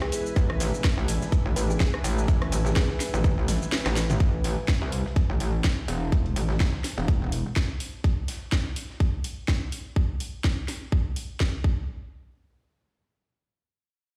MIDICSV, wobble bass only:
0, 0, Header, 1, 2, 480
1, 0, Start_track
1, 0, Key_signature, 0, "minor"
1, 0, Tempo, 480000
1, 362, Time_signature, 4, 2, 24, 8
1, 14162, End_track
2, 0, Start_track
2, 0, Title_t, "Wobble bass"
2, 0, Program_c, 0, 39
2, 362, Note_on_c, 0, 33, 100
2, 716, Note_off_c, 0, 33, 0
2, 976, Note_on_c, 0, 33, 101
2, 1195, Note_off_c, 0, 33, 0
2, 1456, Note_on_c, 0, 33, 95
2, 1545, Note_off_c, 0, 33, 0
2, 1562, Note_on_c, 0, 33, 97
2, 1785, Note_off_c, 0, 33, 0
2, 2042, Note_on_c, 0, 33, 100
2, 2505, Note_off_c, 0, 33, 0
2, 2522, Note_on_c, 0, 33, 98
2, 2876, Note_off_c, 0, 33, 0
2, 3138, Note_on_c, 0, 33, 100
2, 3356, Note_off_c, 0, 33, 0
2, 3378, Note_on_c, 0, 33, 99
2, 3596, Note_off_c, 0, 33, 0
2, 3857, Note_on_c, 0, 33, 106
2, 4185, Note_off_c, 0, 33, 0
2, 4202, Note_on_c, 0, 33, 95
2, 4556, Note_off_c, 0, 33, 0
2, 4817, Note_on_c, 0, 36, 96
2, 5035, Note_off_c, 0, 36, 0
2, 5297, Note_on_c, 0, 33, 97
2, 5385, Note_off_c, 0, 33, 0
2, 5402, Note_on_c, 0, 33, 100
2, 5625, Note_off_c, 0, 33, 0
2, 5881, Note_on_c, 0, 28, 94
2, 6345, Note_off_c, 0, 28, 0
2, 6361, Note_on_c, 0, 33, 95
2, 6715, Note_off_c, 0, 33, 0
2, 6976, Note_on_c, 0, 28, 91
2, 7435, Note_off_c, 0, 28, 0
2, 14162, End_track
0, 0, End_of_file